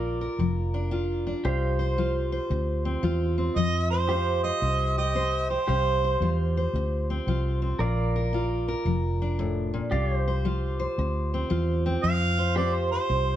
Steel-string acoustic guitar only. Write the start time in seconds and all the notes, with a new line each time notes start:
Already playing: A#3 F4 A#4
0.21 A#4
0.39 F3
0.74 D4
0.91 A#3 F4
1.27 D4
1.45 C3
1.79 C5
1.98 G3 F4
2.32 C5
2.51 C3
2.85 C4
3.03 G3 F4
3.38 C4
3.57 F3
3.91 C5
4.09 C4 C5
4.44 C5
4.62 C3
4.98 G4
5.15 C4 C5
5.50 G4
5.69 C3
6.04 C5
6.22 G3 F4
6.57 C5
6.75 C3
7.10 C4
7.28 G3 F4
7.62 C4
7.80 A#2
8.16 A#4
8.33 A#3 F4
8.68 A#4
8.86 F3
9.22 D4
9.39 A2
9.74 A#2
9.92 C3
10.27 C5
10.45 G3 F4
10.79 C5
10.99 C3
11.34 C4
11.50 G3 F4
11.86 C4
12.04 F3
12.39 C5
12.57 C4 C5
12.92 C5
13.10 C3